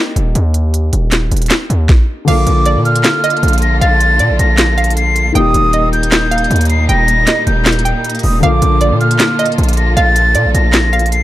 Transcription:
Already playing: A#3 D4 D#4 G4
0.16 D#1, closed hi-hat
0.35 D#2, closed hi-hat
0.54 closed hi-hat
0.74 closed hi-hat
0.93 D#1, closed hi-hat
1.12 snare, clap, closed hi-hat
1.31 D#1, closed hi-hat
1.37 closed hi-hat
1.42 closed hi-hat
1.46 clap, closed hi-hat
1.50 snare, closed hi-hat
1.70 D#2, closed hi-hat
1.89 kick, snare
2.25 A#1 D3 A#3 F4 A4 F5 D6, closed hi-hat, crash
2.30 A4
2.47 A#1, closed hi-hat
2.66 D5, closed hi-hat
2.76 A#2
2.85 F6, closed hi-hat
2.96 closed hi-hat
3.04 snare, clap, closed hi-hat
3.24 D#5, closed hi-hat
3.30 closed hi-hat
3.37 closed hi-hat
3.43 A#1, closed hi-hat
3.48 closed hi-hat
3.53 closed hi-hat
3.58 closed hi-hat
3.62 A#6, closed hi-hat
3.81 A#1 F5 A6, closed hi-hat
4.00 closed hi-hat
4.19 A#2 D5, closed hi-hat
4.30 A#1
4.39 A#1 A#6, closed hi-hat
4.58 snare, clap, closed hi-hat
4.78 F5, closed hi-hat
4.84 closed hi-hat
4.90 closed hi-hat
4.97 C7, closed hi-hat
5.16 closed hi-hat
5.32 D#1 A#2 D#3 G3 A#3 D#4 G5 D#6, closed hi-hat
5.38 G4
5.54 D#1, closed hi-hat
5.73 D#5, closed hi-hat
5.93 G6, closed hi-hat
6.03 closed hi-hat
6.12 snare, clap, closed hi-hat
6.31 F5, closed hi-hat
6.38 closed hi-hat
6.44 closed hi-hat
6.51 D#2, closed hi-hat
6.56 closed hi-hat
6.61 closed hi-hat
6.65 closed hi-hat
6.70 C7, closed hi-hat
6.89 D#1 G5 A#6, closed hi-hat
7.08 closed hi-hat
7.27 D#5, snare, clap, closed hi-hat
7.47 D#1 G6, closed hi-hat
7.65 snare, clap, closed hi-hat
7.72 closed hi-hat
7.79 closed hi-hat
7.85 G5, closed hi-hat
8.04 closed hi-hat
8.10 closed hi-hat
8.15 closed hi-hat
8.19 closed hi-hat
8.23 D#1 D#6, open hi-hat
8.40 A#1 D3 A#3 F4 A4 F5 D6, closed hi-hat
8.46 A4
8.62 A#1, closed hi-hat
8.81 D5, closed hi-hat
8.92 A#2
9.01 F6, closed hi-hat
9.11 closed hi-hat
9.19 snare, clap, closed hi-hat
9.39 D#5, closed hi-hat
9.46 closed hi-hat
9.52 closed hi-hat
9.58 A#1, closed hi-hat
9.63 closed hi-hat
9.69 closed hi-hat
9.73 closed hi-hat
9.77 A#6, closed hi-hat
9.97 A#1 F5 A6, closed hi-hat
10.16 closed hi-hat
10.35 A#2 D5, closed hi-hat
10.45 A#1
10.54 A#1 A#6, closed hi-hat
10.73 snare, clap, closed hi-hat
10.93 F5, closed hi-hat
10.99 closed hi-hat
11.06 closed hi-hat
11.12 C7, closed hi-hat

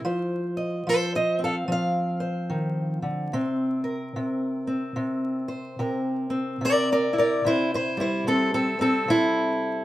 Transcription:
0.05 F3 C5
0.57 D#5
0.87 F3 A4 C5
1.15 C5 D#5
1.39 C4
1.44 A4 F5
1.68 F3
1.72 F5
2.20 C5
2.50 D#3
3.02 D3
3.33 C3 C4
3.84 A#4
4.16 C3
4.67 C4
4.96 C3
5.48 C5
5.79 C3 A#4
6.30 C4
6.61 C3 A#4
6.65 D5
6.92 A#4 D5
7.13 E4
7.18 A#4 D5
7.45 C3 E4 C5
7.74 E4 C5
7.97 G3 E4
8.01 C5
8.27 C3 C4 A4
8.54 C4 A4
8.79 G3 C4 A4
9.08 C3 E4

